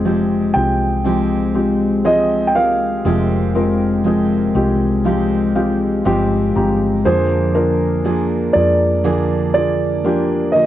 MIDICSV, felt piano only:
0, 0, Header, 1, 2, 480
1, 0, Start_track
1, 0, Key_signature, -4, "minor"
1, 0, Tempo, 1000000
1, 1466, Time_signature, 4, 2, 24, 8
1, 5118, End_track
2, 0, Start_track
2, 0, Title_t, "Felt piano"
2, 0, Program_c, 0, 0
2, 0, Control_c, 0, 64, 127
2, 0, Note_on_c, 0, 48, 47
2, 0, Note_on_c, 0, 56, 70
2, 0, Note_on_c, 0, 60, 64
2, 0, Note_on_c, 0, 65, 66
2, 0, Note_on_c, 0, 67, 79
2, 0, Note_on_c, 0, 68, 80
2, 24, Note_off_c, 0, 56, 0
2, 24, Note_on_c, 0, 56, 59
2, 26, Note_off_c, 0, 60, 0
2, 26, Note_on_c, 0, 60, 59
2, 28, Note_off_c, 0, 65, 0
2, 28, Note_off_c, 0, 67, 0
2, 28, Note_on_c, 0, 65, 57
2, 28, Note_on_c, 0, 67, 65
2, 247, Note_off_c, 0, 48, 0
2, 253, Note_off_c, 0, 56, 0
2, 254, Note_off_c, 0, 60, 0
2, 255, Note_off_c, 0, 65, 0
2, 255, Note_off_c, 0, 67, 0
2, 264, Note_on_c, 0, 56, 56
2, 265, Note_on_c, 0, 65, 52
2, 266, Note_on_c, 0, 60, 50
2, 267, Note_on_c, 0, 67, 62
2, 493, Note_off_c, 0, 56, 0
2, 494, Note_off_c, 0, 60, 0
2, 494, Note_off_c, 0, 65, 0
2, 495, Note_off_c, 0, 67, 0
2, 502, Note_on_c, 0, 56, 53
2, 503, Note_on_c, 0, 60, 51
2, 506, Note_on_c, 0, 65, 53
2, 506, Note_on_c, 0, 67, 61
2, 732, Note_off_c, 0, 56, 0
2, 732, Note_off_c, 0, 60, 0
2, 734, Note_off_c, 0, 65, 0
2, 734, Note_off_c, 0, 67, 0
2, 740, Note_on_c, 0, 56, 58
2, 742, Note_on_c, 0, 60, 52
2, 743, Note_on_c, 0, 65, 52
2, 746, Note_on_c, 0, 67, 65
2, 971, Note_off_c, 0, 56, 0
2, 972, Note_off_c, 0, 60, 0
2, 973, Note_off_c, 0, 65, 0
2, 974, Note_off_c, 0, 67, 0
2, 981, Note_on_c, 0, 56, 64
2, 981, Note_on_c, 0, 60, 65
2, 982, Note_on_c, 0, 65, 63
2, 983, Note_off_c, 0, 68, 0
2, 983, Note_on_c, 0, 68, 75
2, 1211, Note_off_c, 0, 56, 0
2, 1212, Note_off_c, 0, 60, 0
2, 1212, Note_off_c, 0, 65, 0
2, 1213, Note_off_c, 0, 68, 0
2, 1223, Note_on_c, 0, 56, 54
2, 1225, Note_on_c, 0, 60, 50
2, 1228, Note_on_c, 0, 65, 50
2, 1228, Note_on_c, 0, 70, 59
2, 1453, Note_off_c, 0, 56, 0
2, 1454, Note_off_c, 0, 60, 0
2, 1455, Note_off_c, 0, 65, 0
2, 1455, Note_off_c, 0, 70, 0
2, 1463, Note_on_c, 0, 56, 67
2, 1465, Note_on_c, 0, 60, 65
2, 1466, Note_on_c, 0, 48, 49
2, 1466, Note_on_c, 0, 65, 64
2, 1468, Note_on_c, 0, 68, 74
2, 1692, Note_off_c, 0, 56, 0
2, 1693, Note_off_c, 0, 60, 0
2, 1694, Note_off_c, 0, 65, 0
2, 1695, Note_off_c, 0, 68, 0
2, 1704, Note_on_c, 0, 56, 74
2, 1706, Note_on_c, 0, 60, 69
2, 1708, Note_on_c, 0, 65, 66
2, 1709, Note_on_c, 0, 70, 76
2, 1933, Note_off_c, 0, 56, 0
2, 1934, Note_off_c, 0, 60, 0
2, 1935, Note_off_c, 0, 65, 0
2, 1936, Note_off_c, 0, 70, 0
2, 1947, Note_on_c, 0, 56, 67
2, 1949, Note_on_c, 0, 60, 59
2, 1950, Note_on_c, 0, 65, 59
2, 1952, Note_on_c, 0, 68, 72
2, 2167, Note_off_c, 0, 48, 0
2, 2175, Note_off_c, 0, 56, 0
2, 2176, Note_off_c, 0, 60, 0
2, 2176, Note_off_c, 0, 65, 0
2, 2177, Note_off_c, 0, 68, 0
2, 2183, Note_on_c, 0, 56, 66
2, 2185, Note_on_c, 0, 60, 63
2, 2187, Note_on_c, 0, 65, 63
2, 2188, Note_on_c, 0, 75, 53
2, 2189, Note_on_c, 0, 67, 76
2, 2410, Note_off_c, 0, 75, 0
2, 2413, Note_off_c, 0, 56, 0
2, 2413, Note_off_c, 0, 60, 0
2, 2414, Note_off_c, 0, 65, 0
2, 2416, Note_off_c, 0, 67, 0
2, 2424, Note_on_c, 0, 56, 66
2, 2425, Note_on_c, 0, 60, 64
2, 2427, Note_on_c, 0, 77, 57
2, 2428, Note_on_c, 0, 65, 63
2, 2430, Note_on_c, 0, 67, 73
2, 2650, Note_off_c, 0, 77, 0
2, 2653, Note_off_c, 0, 56, 0
2, 2654, Note_off_c, 0, 60, 0
2, 2655, Note_off_c, 0, 65, 0
2, 2656, Note_off_c, 0, 67, 0
2, 2666, Note_on_c, 0, 56, 71
2, 2666, Note_on_c, 0, 60, 63
2, 2667, Note_on_c, 0, 77, 58
2, 2668, Note_on_c, 0, 65, 62
2, 2669, Note_on_c, 0, 67, 74
2, 2890, Note_off_c, 0, 77, 0
2, 2894, Note_off_c, 0, 56, 0
2, 2894, Note_off_c, 0, 60, 0
2, 2895, Note_off_c, 0, 65, 0
2, 2896, Note_off_c, 0, 67, 0
2, 2905, Note_on_c, 0, 56, 85
2, 2906, Note_on_c, 0, 60, 72
2, 2908, Note_on_c, 0, 79, 51
2, 2909, Note_on_c, 0, 65, 75
2, 2909, Note_on_c, 0, 67, 96
2, 3130, Note_off_c, 0, 79, 0
2, 3134, Note_off_c, 0, 56, 0
2, 3134, Note_off_c, 0, 60, 0
2, 3136, Note_off_c, 0, 65, 0
2, 3136, Note_off_c, 0, 67, 0
2, 3145, Note_on_c, 0, 56, 66
2, 3146, Note_on_c, 0, 60, 58
2, 3148, Note_on_c, 0, 65, 57
2, 3148, Note_on_c, 0, 82, 49
2, 3151, Note_on_c, 0, 67, 73
2, 3370, Note_off_c, 0, 82, 0
2, 3374, Note_off_c, 0, 56, 0
2, 3374, Note_off_c, 0, 60, 0
2, 3375, Note_off_c, 0, 65, 0
2, 3376, Note_off_c, 0, 67, 0
2, 3383, Note_on_c, 0, 58, 68
2, 3386, Note_on_c, 0, 62, 65
2, 3386, Note_on_c, 0, 65, 63
2, 3387, Note_on_c, 0, 53, 49
2, 3388, Note_on_c, 0, 68, 79
2, 3391, Control_c, 0, 64, 0
2, 3467, Control_c, 0, 64, 127
2, 3612, Note_off_c, 0, 58, 0
2, 3614, Note_off_c, 0, 62, 0
2, 3614, Note_off_c, 0, 65, 0
2, 3615, Note_off_c, 0, 68, 0
2, 3622, Note_on_c, 0, 58, 72
2, 3622, Note_on_c, 0, 62, 64
2, 3623, Note_on_c, 0, 65, 63
2, 3624, Note_on_c, 0, 70, 78
2, 3852, Note_off_c, 0, 58, 0
2, 3852, Note_off_c, 0, 62, 0
2, 3853, Note_off_c, 0, 65, 0
2, 3853, Note_off_c, 0, 70, 0
2, 3861, Note_on_c, 0, 58, 56
2, 3862, Note_on_c, 0, 62, 48
2, 3864, Note_on_c, 0, 65, 48
2, 3867, Note_on_c, 0, 68, 62
2, 4087, Note_off_c, 0, 53, 0
2, 4092, Note_off_c, 0, 58, 0
2, 4092, Note_off_c, 0, 62, 0
2, 4093, Note_off_c, 0, 65, 0
2, 4095, Note_off_c, 0, 68, 0
2, 4101, Note_on_c, 0, 58, 57
2, 4103, Note_on_c, 0, 62, 53
2, 4105, Note_on_c, 0, 65, 56
2, 4105, Note_on_c, 0, 68, 61
2, 4332, Note_off_c, 0, 58, 0
2, 4333, Note_off_c, 0, 62, 0
2, 4333, Note_off_c, 0, 65, 0
2, 4334, Note_off_c, 0, 68, 0
2, 4339, Note_on_c, 0, 58, 57
2, 4343, Note_on_c, 0, 62, 51
2, 4344, Note_on_c, 0, 65, 52
2, 4345, Note_on_c, 0, 68, 63
2, 4571, Note_off_c, 0, 58, 0
2, 4573, Note_off_c, 0, 62, 0
2, 4573, Note_off_c, 0, 65, 0
2, 4574, Note_off_c, 0, 68, 0
2, 4580, Note_on_c, 0, 58, 55
2, 4581, Note_on_c, 0, 62, 50
2, 4583, Note_on_c, 0, 65, 53
2, 4584, Note_on_c, 0, 68, 61
2, 4811, Note_off_c, 0, 58, 0
2, 4812, Note_off_c, 0, 62, 0
2, 4813, Note_off_c, 0, 65, 0
2, 4813, Note_off_c, 0, 68, 0
2, 4820, Note_on_c, 0, 58, 72
2, 4822, Note_on_c, 0, 62, 62
2, 4824, Note_on_c, 0, 65, 65
2, 4827, Note_on_c, 0, 67, 75
2, 5051, Note_off_c, 0, 58, 0
2, 5052, Note_off_c, 0, 62, 0
2, 5053, Note_off_c, 0, 65, 0
2, 5054, Note_off_c, 0, 67, 0
2, 5063, Note_on_c, 0, 58, 54
2, 5064, Note_on_c, 0, 50, 50
2, 5066, Note_on_c, 0, 65, 49
2, 5067, Note_on_c, 0, 70, 57
2, 5118, Note_off_c, 0, 50, 0
2, 5118, Note_off_c, 0, 58, 0
2, 5118, Note_off_c, 0, 65, 0
2, 5118, Note_off_c, 0, 70, 0
2, 5118, End_track
0, 0, End_of_file